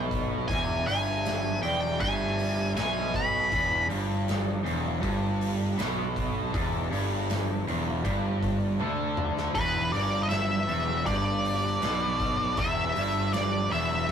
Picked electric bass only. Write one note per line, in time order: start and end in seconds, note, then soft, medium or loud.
0.00 0.44 B1 medium
0.50 0.84 E1 medium
0.88 1.59 G1 medium
1.62 1.97 E1 medium
2.01 2.72 G1 medium
2.75 3.46 B1 medium
3.52 3.87 E1 medium
3.90 4.61 G1 medium
4.65 5.00 E1 medium
5.03 5.74 G1 medium
5.79 6.50 B1 medium
6.54 6.88 E1 medium
6.91 7.63 G1 medium
7.68 8.02 E1 medium
8.04 8.76 G1 medium
8.81 9.52 D2 medium
9.56 9.90 E1 medium
9.94 10.65 G1 medium
10.70 11.04 E1 medium
11.07 11.78 G1 medium
11.82 12.53 B1 medium
12.57 12.92 E1 medium
12.96 13.67 G1 medium
13.70 14.05 E1 medium